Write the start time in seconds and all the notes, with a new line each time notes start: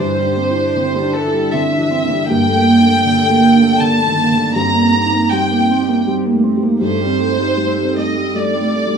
Already playing: D3 D4 G4 C5 E5
0.00 G2 E3
0.18 G3
0.25 D4
0.37 C4
0.51 E4
0.55 D4
0.75 D3 C4
0.95 G3
1.02 D4
1.13 E3 A4
1.27 E4
1.33 G3
1.53 D3 C4 E5
1.72 D4
1.78 E3
1.90 C4
2.04 D3
2.09 G3
2.28 G2 A#3 A4 D5 G5
2.47 A3
2.55 A#3
2.66 A#3
2.80 D4
2.85 A3
3.04 D3 A#3
3.22 A3
3.30 A#3
3.42 A#3
3.55 D4
3.61 A3
3.79 D3 A#3 A5
3.99 A3
4.06 D#3
4.16 A#3
4.31 D3
4.36 A3
4.55 G2 C4 D#4 G4 A#5
4.74 A#3
4.81 C4
4.94 C4
5.06 D#4
5.13 A#3
5.31 G3 C4 G5
5.51 A#3
5.57 C4
5.70 C4
5.82 D#4
5.88 A#3
6.06 G3 C4
6.25 A#3
6.33 A3
6.43 C4
6.57 G3
6.63 A#3
6.81 G2 A3 A4 C5
7.01 G3
7.06 C4
7.20 A3
7.32 D#4
7.39 G3
7.57 G3 A3
7.77 G3
7.83 C4
7.97 A3 D#5
8.09 D#4
8.16 G3
8.35 G3 A3 D5
8.55 G3
8.61 A3
8.75 A3
8.87 G3
8.94 G3